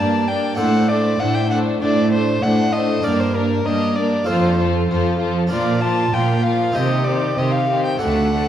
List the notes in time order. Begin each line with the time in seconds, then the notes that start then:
Already playing: D4 A#4 D5 A5
0.00 G2 A#3 D5
0.28 A#3 D4 D5 G5
0.55 D4 A4 C5 F#5
0.59 A2 A3 D4
0.89 A3 D4 C5 D5
1.20 A2 A3 D4 C5 F#5
1.35 G5
1.50 A3 D4 C5 F#5
1.81 A2 A3 D4 C5 D5
2.12 A3 D4 C5
2.43 A2 A3 D4 C5 F#5
2.73 A3 D4 C5 D#5
3.02 G2 A#3 D4 A#4 D5
3.06 G2 A#4
3.20 C5
3.34 A#3 D4 A#4
3.65 G2 A#3 D4 A#4 D#5
3.96 A#3 D4 A#4 D5
4.25 F2 F3 F4 A4 C5
4.29 F2
4.42 C5
4.58 F3 F4 A4
4.88 F2 F3 F4 A4
5.19 F3 F4 A4
5.47 D4 F4 A#4 D5
5.51 A#2 F3 A#4
5.81 F3 F4 A#4 A5
6.12 A#2 F3 F4 A#4 G5
6.43 F3 F4 A#4 F5
6.72 D#3 C4 D#4 G4 D#5
6.76 C3
7.04 D#3 C4 G4 D5
7.37 C3 D#3 C4 G4 D#5
7.52 F5
7.69 D#3 C4 G4
7.85 G5
7.98 D3 A3 D4 F#4
8.02 D2 A3 F#5
8.33 D3 A3 D4